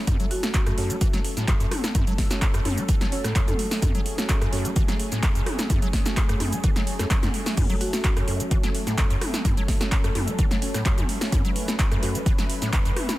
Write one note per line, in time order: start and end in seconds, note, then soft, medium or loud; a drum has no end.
0.00 13.19 F#3 medium
0.00 13.19 A3 medium
0.00 13.19 C#4 medium
0.07 0.18 F#2 loud
0.07 3.81 A4 loud
0.07 kick loud
0.07 closed hi-hat medium
0.07 mid tom medium
0.07 shaker medium
0.20 0.26 F#3 loud
0.20 closed hi-hat soft
0.20 shaker soft
0.31 0.97 F#4 medium
0.31 open hi-hat loud
0.43 0.63 C#4 medium
0.43 0.63 F#4 medium
0.43 0.63 A4 medium
0.43 snare medium
0.43 closed hi-hat soft
0.43 shaker medium
0.54 kick loud
0.54 clap loud
0.54 closed hi-hat medium
0.54 shaker medium
0.67 0.73 F#2 loud
0.67 cross-stick medium
0.67 closed hi-hat soft
0.67 shaker soft
0.78 0.91 F#2 medium
0.78 0.98 C#4 medium
0.78 0.98 F#4 medium
0.78 0.98 A4 medium
0.78 open hi-hat loud
0.90 0.96 A3 medium
0.90 closed hi-hat soft
0.90 shaker medium
1.01 1.08 E3 loud
1.01 kick loud
1.01 closed hi-hat medium
1.01 shaker medium
1.13 1.20 F#3 loud
1.13 snare medium
1.13 closed hi-hat soft
1.13 shaker soft
1.25 open hi-hat loud
1.37 1.46 A2 medium
1.37 snare soft
1.37 closed hi-hat soft
1.37 shaker medium
1.48 kick loud
1.48 clap loud
1.48 closed hi-hat medium
1.48 shaker medium
1.60 1.66 F#2 loud
1.60 closed hi-hat soft
1.60 shaker soft
1.71 cross-stick medium
1.71 open hi-hat loud
1.71 mid tom medium
1.84 snare medium
1.84 closed hi-hat soft
1.84 mid tom medium
1.84 shaker medium
1.95 2.05 F#2 loud
1.95 kick loud
1.95 closed hi-hat medium
1.95 mid tom medium
1.95 shaker medium
2.07 2.13 F#3 loud
2.07 closed hi-hat soft
2.07 shaker soft
2.18 kick medium
2.18 snare medium
2.18 open hi-hat loud
2.31 2.43 C#4 medium
2.31 2.43 F#4 medium
2.31 2.43 A4 loud
2.31 snare medium
2.31 closed hi-hat soft
2.31 shaker medium
2.42 kick loud
2.42 clap loud
2.42 closed hi-hat medium
2.42 shaker medium
2.54 2.60 F#2 loud
2.54 cross-stick medium
2.54 closed hi-hat soft
2.54 shaker soft
2.65 2.79 F#2 medium
2.65 2.79 C#4 medium
2.65 2.79 F#4 medium
2.65 2.79 A4 medium
2.65 open hi-hat loud
2.65 mid tom medium
2.78 2.84 A3 medium
2.78 closed hi-hat soft
2.78 shaker medium
2.89 2.95 E3 loud
2.89 kick loud
2.89 closed hi-hat medium
2.89 shaker medium
3.01 3.07 F#3 loud
3.01 snare medium
3.01 closed hi-hat soft
3.01 shaker soft
3.12 3.25 C#4 medium
3.12 3.25 F#4 medium
3.12 3.25 C#5 medium
3.12 open hi-hat loud
3.24 3.34 A2 medium
3.24 cross-stick medium
3.24 snare soft
3.24 closed hi-hat soft
3.24 shaker medium
3.35 3.42 F#2 medium
3.35 kick loud
3.35 clap loud
3.35 closed hi-hat medium
3.35 shaker medium
3.48 3.54 F#2 loud
3.48 3.95 A4 medium
3.48 closed hi-hat soft
3.48 mid tom medium
3.48 shaker soft
3.59 open hi-hat loud
3.71 snare medium
3.71 open hi-hat medium
3.71 shaker medium
3.82 3.93 F#2 loud
3.82 7.56 G#4 loud
3.82 kick loud
3.82 closed hi-hat loud
3.82 mid tom medium
3.82 shaker medium
3.95 4.01 F#3 loud
3.95 closed hi-hat soft
3.95 shaker soft
4.06 open hi-hat loud
4.18 4.38 C#4 medium
4.18 4.38 F#4 medium
4.18 4.38 A4 medium
4.18 snare medium
4.18 closed hi-hat soft
4.18 shaker medium
4.29 kick loud
4.29 clap loud
4.29 closed hi-hat loud
4.29 shaker medium
4.42 4.48 F#2 loud
4.42 cross-stick medium
4.42 closed hi-hat soft
4.42 shaker soft
4.53 4.66 F#2 medium
4.53 4.73 C#4 medium
4.53 4.73 F#4 medium
4.53 4.73 A4 medium
4.53 open hi-hat loud
4.65 4.71 A3 medium
4.65 closed hi-hat soft
4.65 shaker medium
4.76 4.83 E3 loud
4.76 kick loud
4.76 closed hi-hat loud
4.76 shaker medium
4.88 4.95 F#3 loud
4.88 snare medium
4.88 closed hi-hat soft
4.88 shaker soft
5.00 open hi-hat loud
5.12 5.21 A2 medium
5.12 snare soft
5.12 closed hi-hat soft
5.12 shaker medium
5.23 5.30 F#2 medium
5.23 kick loud
5.23 clap loud
5.23 closed hi-hat loud
5.23 shaker medium
5.35 5.41 F#2 loud
5.35 closed hi-hat soft
5.35 shaker soft
5.46 cross-stick medium
5.46 open hi-hat loud
5.46 mid tom medium
5.59 snare medium
5.59 closed hi-hat soft
5.59 mid tom medium
5.59 shaker medium
5.70 5.80 F#2 loud
5.70 kick loud
5.70 closed hi-hat loud
5.70 mid tom medium
5.70 shaker medium
5.82 5.88 F#3 loud
5.82 closed hi-hat soft
5.82 shaker soft
5.93 kick medium
5.93 snare medium
5.93 open hi-hat loud
6.06 6.18 C#4 medium
6.06 6.18 F#4 medium
6.06 6.18 A4 loud
6.06 snare medium
6.06 closed hi-hat soft
6.06 shaker medium
6.17 kick loud
6.17 clap loud
6.17 closed hi-hat medium
6.17 shaker medium
6.29 6.35 F#2 loud
6.29 cross-stick medium
6.29 closed hi-hat soft
6.29 shaker soft
6.40 6.54 F#2 medium
6.40 6.53 C#4 medium
6.40 6.54 F#4 medium
6.40 6.54 A4 medium
6.40 open hi-hat loud
6.40 mid tom medium
6.53 6.59 A3 medium
6.53 closed hi-hat soft
6.53 shaker medium
6.64 6.71 E3 loud
6.64 kick loud
6.64 closed hi-hat loud
6.64 shaker medium
6.76 6.82 F#3 loud
6.76 snare medium
6.76 closed hi-hat soft
6.76 shaker soft
6.87 open hi-hat loud
6.99 7.06 F#2 medium
6.99 7.12 C#4 medium
6.99 7.12 F#4 medium
6.99 7.12 A4 medium
6.99 cross-stick medium
6.99 snare soft
6.99 closed hi-hat soft
6.99 shaker medium
7.11 7.17 F#3 loud
7.11 kick loud
7.11 clap loud
7.11 closed hi-hat loud
7.11 shaker medium
7.23 7.29 F#2 loud
7.23 snare medium
7.23 closed hi-hat soft
7.23 mid tom medium
7.23 shaker soft
7.34 open hi-hat loud
7.46 snare medium
7.46 open hi-hat medium
7.46 shaker medium
7.57 7.68 F#2 loud
7.57 11.31 A4 loud
7.57 kick loud
7.57 closed hi-hat medium
7.57 mid tom loud
7.57 crash medium
7.57 shaker medium
7.70 7.76 F#3 loud
7.70 closed hi-hat soft
7.70 shaker soft
7.81 8.47 F#4 medium
7.81 open hi-hat loud
7.93 8.13 C#4 medium
7.93 8.13 F#4 medium
7.93 8.13 A4 medium
7.93 snare medium
7.93 closed hi-hat soft
7.93 shaker medium
8.04 kick loud
8.04 clap loud
8.04 closed hi-hat loud
8.04 shaker medium
8.17 8.23 F#2 loud
8.17 cross-stick medium
8.17 closed hi-hat soft
8.17 shaker soft
8.28 8.42 F#2 medium
8.28 8.48 C#4 medium
8.28 8.48 F#4 medium
8.28 8.48 A4 medium
8.28 open hi-hat loud
8.40 8.46 A3 medium
8.40 closed hi-hat soft
8.40 shaker medium
8.51 8.58 E3 loud
8.51 kick loud
8.51 closed hi-hat loud
8.51 shaker medium
8.63 8.70 F#3 loud
8.63 snare medium
8.63 closed hi-hat soft
8.63 shaker soft
8.75 open hi-hat loud
8.87 8.96 A2 medium
8.87 snare soft
8.87 closed hi-hat soft
8.87 shaker medium
8.98 9.05 F#2 medium
8.98 kick loud
8.98 clap loud
8.98 closed hi-hat loud
8.98 shaker medium
9.10 9.16 F#2 loud
9.10 closed hi-hat soft
9.10 shaker soft
9.21 cross-stick medium
9.21 open hi-hat loud
9.21 mid tom medium
9.34 snare medium
9.34 closed hi-hat soft
9.34 mid tom medium
9.34 shaker medium
9.45 9.55 F#2 loud
9.45 kick loud
9.45 closed hi-hat loud
9.45 mid tom loud
9.45 shaker medium
9.57 9.63 F#3 loud
9.57 closed hi-hat soft
9.57 shaker soft
9.68 kick medium
9.68 snare medium
9.68 open hi-hat loud
9.81 9.93 C#4 medium
9.81 9.93 F#4 medium
9.81 9.93 A4 loud
9.81 snare medium
9.81 closed hi-hat soft
9.81 shaker medium
9.92 kick loud
9.92 clap loud
9.92 closed hi-hat loud
9.92 shaker medium
10.04 10.10 F#2 loud
10.04 cross-stick medium
10.04 closed hi-hat soft
10.04 shaker soft
10.15 10.29 F#2 medium
10.15 10.28 C#4 medium
10.15 10.28 F#4 medium
10.15 10.28 A4 medium
10.15 open hi-hat loud
10.15 mid tom medium
10.28 10.34 A3 medium
10.28 closed hi-hat soft
10.28 shaker medium
10.39 10.45 E3 loud
10.39 kick loud
10.39 closed hi-hat medium
10.39 shaker medium
10.51 10.57 F#3 loud
10.51 snare medium
10.51 closed hi-hat soft
10.51 shaker soft
10.62 10.75 C#4 medium
10.62 10.75 F#4 medium
10.62 10.75 C#5 medium
10.62 open hi-hat loud
10.74 10.84 A2 medium
10.74 cross-stick medium
10.74 snare soft
10.74 closed hi-hat soft
10.74 shaker medium
10.85 10.92 F#2 medium
10.85 kick loud
10.85 clap loud
10.85 closed hi-hat medium
10.85 shaker medium
10.98 11.04 F#2 loud
10.98 closed hi-hat soft
10.98 mid tom medium
10.98 shaker soft
11.09 open hi-hat loud
11.21 snare medium
11.21 open hi-hat medium
11.21 shaker medium
11.32 11.43 F#2 loud
11.32 13.19 B4 loud
11.32 kick loud
11.32 closed hi-hat medium
11.32 mid tom loud
11.32 shaker medium
11.45 11.51 F#3 loud
11.45 closed hi-hat soft
11.45 shaker soft
11.56 open hi-hat loud
11.68 11.88 C#4 medium
11.68 11.88 F#4 medium
11.68 11.88 A4 medium
11.68 snare medium
11.68 closed hi-hat soft
11.68 shaker medium
11.79 kick loud
11.79 clap loud
11.79 closed hi-hat medium
11.79 shaker medium
11.92 11.98 F#2 loud
11.92 cross-stick medium
11.92 closed hi-hat soft
11.92 shaker soft
12.03 12.17 F#2 medium
12.03 12.23 C#4 medium
12.03 12.23 F#4 medium
12.03 12.23 A4 medium
12.03 open hi-hat loud
12.15 12.21 A3 medium
12.15 closed hi-hat soft
12.15 shaker medium
12.26 12.33 E3 loud
12.26 kick loud
12.26 closed hi-hat medium
12.26 shaker medium
12.38 12.45 F#3 loud
12.38 snare medium
12.38 closed hi-hat soft
12.38 shaker soft
12.50 open hi-hat loud
12.62 12.71 A2 medium
12.62 snare soft
12.62 closed hi-hat soft
12.62 shaker medium
12.73 12.80 F#2 medium
12.73 kick loud
12.73 clap loud
12.73 closed hi-hat medium
12.73 shaker medium
12.85 12.91 F#2 loud
12.85 closed hi-hat soft
12.85 shaker soft
12.97 cross-stick medium
12.97 open hi-hat loud
12.97 mid tom loud
13.09 snare medium
13.09 closed hi-hat soft
13.09 mid tom medium
13.09 shaker medium